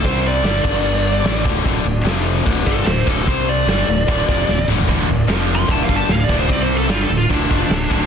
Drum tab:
CC |x---x-x-x---x---|x---x---x---x---|x---x---x-------|x---x---x---x---|
SD |----o-------o---|----o-------o---|----o-------o---|----o-------o---|
T1 |----------------|----------------|-------------o--|----------------|
T2 |----------------|----------------|--------------o-|----------------|
FT |----------------|----------------|---------------o|----------------|
BD |o-----o-------o-|o-------o-o---o-|o-------o-o-----|o-------o-o---o-|

CC |x---x---x---x---|
SD |----o-------o---|
T1 |----------------|
T2 |----------------|
FT |----------------|
BD |o-------o-o---o-|